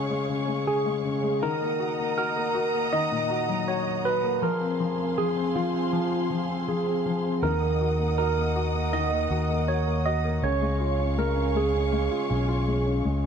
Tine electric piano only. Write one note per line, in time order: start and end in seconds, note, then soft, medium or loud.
0.67 1.45 G#4 medium
1.43 2.17 A#4 medium
2.18 2.95 A#4 medium
2.93 3.70 D#5 medium
3.68 4.06 C#5 medium
4.05 4.44 B4 medium
4.43 5.20 A#4 medium
5.18 5.56 G#4 medium
5.56 6.71 F4 medium
6.68 7.45 G#4 medium
7.43 8.17 A#4 medium
8.18 8.95 A#4 medium
8.93 9.70 D#5 medium
9.68 10.07 C#5 medium
10.06 10.44 D#5 medium
10.44 11.20 C#5 medium
11.19 11.57 A#4 medium
11.57 13.02 G#4 medium